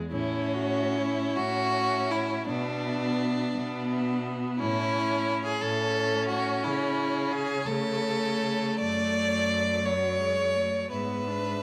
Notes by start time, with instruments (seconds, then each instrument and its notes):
Already playing: viola G#3
0.11 cello A2, violin C#4, viola E4
0.52 viola F#4, violin E5
0.96 viola E4
1.37 cello A2, viola C#4, violin F#4
1.75 violin E5
2.11 violin E4
2.47 cello B2, viola B3, violin D4 E5
2.84 violin E5
3.54 cello B2, viola B3
3.90 violin E5
4.58 cello A2, viola C#4, violin E4
4.96 violin C#5
5.45 violin G#4
5.61 cello A2, viola C#4, violin A4
5.96 violin C#5
6.28 violin F#4
6.63 cello C#3, violin E4 C#5
6.99 violin C#5
7.32 violin G#4
7.66 cello C#3, viola A3, violin A4
8.04 violin C#5
8.79 cello F#2, violin D5
9.18 violin C#5
9.53 violin D5
9.85 viola F#3, violin C#5
10.20 viola G#3
10.56 viola A3
10.91 cello G#2, viola B3, violin B4 E5
11.28 viola D4